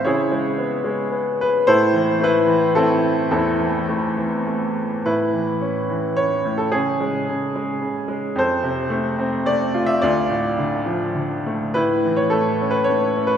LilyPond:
<<
  \new Staff \with { instrumentName = "Upright piano" } { \time 3/4 \key a \minor \tempo 4 = 108 << { cis''4 r4. b'8 | c''4 b'4 a'4 | a'2~ a'8 r8 | \key a \major b'2 cis''8. a'16 |
gis'2~ gis'8 r8 | c''2 d''8. e''16 | d''2~ d''8 r8 | b'8. cis''16 a'8. b'16 cis''8. b'16 | } \\ { <e' gis'>4. r4. | <e' a'>4 e'4 <c' e'>4 | <c' e'>2~ <c' e'>8 r8 | e'2 r4 |
cis'2~ cis'8 r8 | a'2 r4 | f'2~ f'8 r8 | e'4. r4. | } >> }
  \new Staff \with { instrumentName = "Upright piano" } { \clef bass \time 3/4 \key a \minor cis8 gis8 b8 gis8 b4 | a,8 e8 a8 e8 a4 | e,8 e8 a8 e8 a4 | \key a \major a,8 e8 cis'8 e8 cis'8 a,8 |
cis8 gis8 cis8 gis8 cis8 gis8 | f,8 c8 a8 c'8 a8 f'8 | d,8 a,8 d8 f8 d8 a8 | a,8 e8 a8 cis'8 a8 cis'8 | }
>>